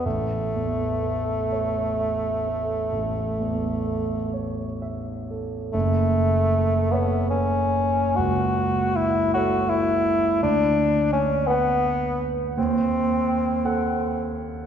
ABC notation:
X:1
M:12/8
L:1/8
Q:3/8=51
K:F#m
V:1 name="Grand piano"
A,,, E,, A c e A A,,, E,, A c e A | F,,,3 [Ace]3 C,,3 [Ace]3 | D,,3 [Bf]3 ^D,,3 [Af]3 |]
V:2 name="Bassoon"
A,8- A, z3 | A,3 B, C2 F2 E F E2 | D2 C B,2 z ^B,4- B, z |]